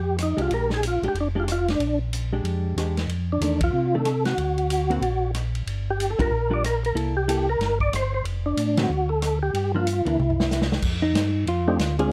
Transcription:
Already playing: F2 G4
0.18 cross-stick, hi-hat pedal, ride
0.23 D#4
0.37 C2 G#3 D4 G4, ride
0.42 F4
0.50 A#1 A#4, ride
0.70 snare
0.74 G#4
0.83 hi-hat pedal, ride
0.87 F4
1.02 A#1 G#3 D4 G4, ride
1.08 G4
1.14 F1, ride
1.21 D4
1.35 G#3 D4 G4
1.40 F4
1.48 cross-stick, hi-hat pedal, ride
1.52 F4
1.68 D4, snare, ride
1.79 A#1, ride
2.13 hi-hat pedal, ride
2.33 G#3 D4 G4
2.44 F2, ride
2.76 E2 G#3 D4 G4, cross-stick, hi-hat pedal, ride
2.97 snare, ride
3.07 F2, ride
3.32 D4
3.40 E2 D#3 A3 D4, hi-hat pedal, ride
3.61 F4, kick, ride
3.73 C3
3.94 D#3 A3 D4 A4
4.05 cross-stick, hi-hat pedal, ride
4.25 F#4, snare, ride
4.37 D2, ride
4.58 ride
4.70 hi-hat pedal, ride
4.90 D3 A#3 C4 F#4, ride
5.01 A#1, ride
5.34 cross-stick, hi-hat pedal, ride
5.55 ride
5.66 G1, ride
5.90 G4
6.00 hi-hat pedal, ride
6.10 A4
6.19 G1 G3 D4 F4 A#4, kick, ride
6.31 A#1
6.50 G3 D4 F4 A#4 D5
6.64 A#4, cross-stick, hi-hat pedal, ride
6.84 A#4, ride
6.94 C2 A#3 E4 A4, ride
7.17 G4
7.28 A#3 E4 A4, hi-hat pedal, ride
7.50 A#4
7.59 G1, snare, ride
7.80 D5, kick
7.92 G1 C5, cross-stick, hi-hat pedal, ride
8.14 C5
8.24 F1, ride
8.46 D4
8.57 A2, hi-hat pedal, ride
8.77 D3 F#3 C4 D#4 F#4, snare, ride
8.89 D2
9.09 A4
9.22 cross-stick, hi-hat pedal, ride
9.43 G4
9.54 G2, ride
9.75 F3 A#3 D4 F4
9.87 hi-hat pedal, ride
10.05 D2 E3 A#3 D4 E4, ride
10.18 C2, mid tom
10.30 floor tom
10.40 snare
10.51 snare, hi-hat pedal
10.62 snare
10.72 snare
10.82 F2, kick, crash
11.02 D#4
11.13 G2, snare, hi-hat pedal, ride
11.47 F2 F4, ride
11.68 A3 C4 D4 D#4 G4
11.79 D2, snare, hi-hat pedal, ride
11.99 G#3 C4 D4 F4 G#4, ride

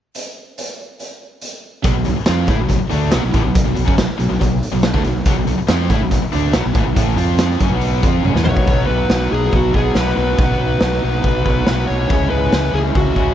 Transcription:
0.15 closed hi-hat
0.58 closed hi-hat
0.99 closed hi-hat
1.41 closed hi-hat
1.83 B1 B2 F#3, kick, closed hi-hat
1.95 B1 B2 F#3
2.05 B1 B2 F#3, closed hi-hat
2.16 muted distorted electric guitar stroke, muted overdriven electric guitar stroke, muted fingered electric bass stroke
2.26 F2 F3 C4 F4, snare, closed hi-hat
2.47 A2 A3 E4, kick, closed hi-hat
2.58 B1 B2 F#3
2.69 B1 B2 F#3, kick, closed hi-hat
2.79 muted distorted electric guitar stroke, muted overdriven electric guitar stroke, muted fingered electric bass stroke
2.90 D2 D3 A3 D4, closed hi-hat
3.11 B1 B2 F#3, snare, closed hi-hat
3.22 B1 B2 F#3
3.31 A1 A2 E3, kick, closed hi-hat
3.43 B1 B2 F#3
3.55 kick, closed hi-hat
3.65 B1 B2 F#3
3.76 B1 B2 F#3, closed hi-hat
3.86 F#2 F#3 C#4, kick
3.98 B1 B2 F#3, snare, closed hi-hat
4.07 muted distorted electric guitar stroke, muted overdriven electric guitar stroke, muted fingered electric bass stroke
4.19 B1 B2 F#3, closed hi-hat
4.29 B1 B2 F#3
4.41 B1 B2 F#3, kick, closed hi-hat
4.63 closed hi-hat
4.73 B1 B2 F#3
4.83 snare, closed hi-hat
4.93 D2 D3 A3, kick
5.04 B1 B2 F#3, closed hi-hat
5.25 B1 B2 F#3, kick, closed hi-hat
5.35 B1 B2 F#3
5.46 B1 B2, closed hi-hat
5.50 F#3
5.58 muted distorted electric guitar stroke, muted fingered electric bass stroke, muted overdriven electric guitar stroke
5.68 F2 F3 C4 F4, snare, closed hi-hat
5.90 A2 A3 E4, kick, closed hi-hat
6.00 B1 B2 F#3
6.11 B1 B2 F#3, kick, closed hi-hat
6.22 muted distorted electric guitar stroke, muted overdriven electric guitar stroke, muted fingered electric bass stroke
6.32 D2 D3 A3 D4, closed hi-hat
6.53 B1 B2 F#3, snare, closed hi-hat
6.64 B1 B2 F#3
6.73 A1 A2 E3, kick, closed hi-hat
6.85 B1 B2 F#3
6.95 A1 A2 E3 A3, kick, closed hi-hat
7.16 F2 F3 C4 F4, closed hi-hat
7.38 snare, closed hi-hat
7.59 F#2 F#3 C#4, kick, closed hi-hat
7.68 B1 B2 F#3 B3
7.81 closed hi-hat
8.02 F2 F3 C4 F4, kick, closed hi-hat
8.23 F#2 F#3 C#4, high tom
8.34 E2 E3 B3, snare
8.44 B1 B2 F#3 B3 C#5, mid tom
8.57 kick
8.66 B1 B2 F#3 B3 D#4 F#4, kick, open hi-hat
8.86 B1 B3 D#4 F#4 B4
9.09 B1 B2 F#3 B3 D#4 F#4, snare, open hi-hat
9.32 B1 G#4
9.52 B1, kick, open hi-hat
9.56 F#4
9.73 B1 B2 F#3 B3 D#4 F#4 G#4, kick
9.94 B1 B2 F#3 B3 D#4 F#4 B4, snare, open hi-hat
10.16 B1 B3 D#4 F#4 B4
10.37 B1 B2 F#3 B3 D#4 F#4, kick, open hi-hat
10.59 B1 B3 D#4 F#4
10.80 B1 B2 F#3 B3 D#4 F#4, snare, open hi-hat
11.04 B1
11.23 B1, kick, open hi-hat
11.43 B1 B2 F#3 B3 D#4 F#4, kick
11.64 B1 B2 F#3 B3 D#4 F#4, snare, open hi-hat
11.68 F#3
11.86 B3 D#4 F#4 C#5
11.90 B1
12.07 C#2 C#3 E3 G#3 C#4 E4, kick, open hi-hat
12.29 C#2 G#3 C#4 E4 B4
12.52 C#2 C#3 E3 G#3 C#4 E4, snare, open hi-hat
12.73 C#2 G#4
12.95 C#2 F#4, kick, open hi-hat
13.13 C#2 C#3 G#3 C#4 E4, kick

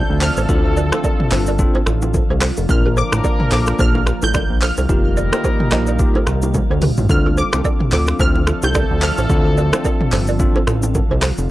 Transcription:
Already playing: D3 F3 A3 C4 D4 F4 A4 G6, impact
0.10 D2
0.21 A4 C5 F6, clap, open hi-hat, shaker
0.37 A1 A4 C5, high bongo, shaker
0.49 D2 C4 D4 F4 A4, kick, low conga, shaker
0.77 A#4 D5, shaker
0.92 C4 D4 F4 A4 C5, finger snap, cross-stick, low bongo, shaker
1.04 A4 D5, kick, high bongo, shaker
1.20 mid tom
1.31 G1 C4 D4 F4 A4 C5, clap, open hi-hat, low conga, shaker
1.46 A#4 D5, shaker
1.59 C4 D4 F4 A4, kick, shaker
1.75 A4 C5, high bongo, low bongo
1.86 A1 F4 A4, finger snap, cross-stick, shaker
2.02 C4 D4 F4 A4, low bongo, shaker
2.14 kick, high bongo, low conga, shaker
2.30 C2 A4 C5
2.41 A4 C5, finger snap, cross-stick, clap, open hi-hat, shaker
2.57 F1, high bongo, shaker
2.69 A#1 D3 F3 A#3 D4 F4 A#4 F6, kick, low conga, shaker
2.86 G4 A#4
2.97 A4 C5 D6, shaker
3.12 A1 A#3 D4 F4 A#4, finger snap, cross-stick, low bongo, shaker
3.24 A#4 D5, kick, high bongo, shaker
3.40 mid tom
3.51 A#1 A#3 D4 F4 A4 C5 D6, clap, open hi-hat, low conga, shaker
3.67 finger snap, cross-stick, shaker
3.79 A#1 A#3 D4 F4 A4 C5 F6, kick, shaker
3.95 high bongo, low bongo
4.07 G4 A#4, finger snap, cross-stick, shaker
4.22 A1 A#3 D4 F4 A4 G6, low bongo, shaker
4.34 A#4 D5, finger snap, kick, cross-stick, high bongo, low conga, shaker
4.50 A#1
4.62 A4 C5 F6, clap, open hi-hat, shaker
4.77 C2 A4 C5, high bongo, shaker
4.89 F1 D#3 G3 A#3 D#4 F4 G4 A#4, kick, low conga, shaker
5.17 A#4 D5, shaker
5.32 A#3 D#4 F4 G4 A4 C5, finger snap, cross-stick, low bongo, shaker
5.44 G4 C5, kick, high bongo, shaker
5.60 mid tom
5.71 A#1 A#3 D#4 F4 G4 C5 D#5, finger snap, cross-stick, clap, low bongo, low conga, shaker
5.87 A#4 D5, shaker
5.99 A#3 D#4 F4 G4, kick, shaker
6.15 A4 C5, high bongo, low bongo
6.27 C2 G4 A#4, finger snap, cross-stick, shaker
6.42 A#3 D#4 F4 G4, low bongo, shaker
6.54 kick, high tom, high bongo, low conga, shaker
6.70 D2 A4 C5
6.82 G4 A#4, mid tom, open hi-hat, shaker
6.97 A1, floor tom, high bongo, shaker
7.09 D2 D3 F3 C4 D4 F4 A4 F6, kick, low conga, shaker
7.26 F4 A4
7.37 A4 C5 D6, shaker
7.53 C2 C4 D4 F4 A4, finger snap, cross-stick, low bongo, shaker
7.65 A4 D5, kick, high bongo, shaker
7.80 mid tom
7.91 D2 C4 D4 F4 A4 C5 D6, clap, open hi-hat, low conga, shaker
8.07 finger snap, cross-stick, shaker
8.19 D2 F3 A3 C4 D4 F4 A4 C5 F6, kick, shaker
8.36 high bongo, low bongo
8.47 F4 A4, finger snap, cross-stick, shaker
8.62 C2 C4 D4 D#4 F4 G4 A4 G6, low bongo, shaker
8.74 A4 D5, finger snap, kick, cross-stick, high bongo, low conga, shaker
8.91 D2
9.02 A4 C5 F6, clap, open hi-hat, shaker
9.18 A1 A4 C5, high bongo, shaker
9.30 D2 C4 D4 F4 A4, kick, low conga, shaker
9.57 A#4 D5, shaker
9.73 C4 D4 F4 A4 C5, finger snap, cross-stick, low bongo, shaker
9.85 A4 D5, kick, high bongo, shaker
10.01 mid tom
10.11 G1 C4 D4 F4 A4 C5, clap, open hi-hat, low conga, shaker
10.27 A#4 D5, shaker
10.40 C4 D4 F4 A4, kick, shaker
10.56 A4 C5, high bongo, low bongo
10.67 A1 F4 A4, finger snap, cross-stick, shaker
10.83 C4 D4 F4 A4, low bongo, shaker
10.95 kick, high bongo, low conga, shaker
11.11 C2 A4 C5
11.22 A4 C5, finger snap, cross-stick, clap, open hi-hat, shaker
11.38 F1, high bongo, shaker

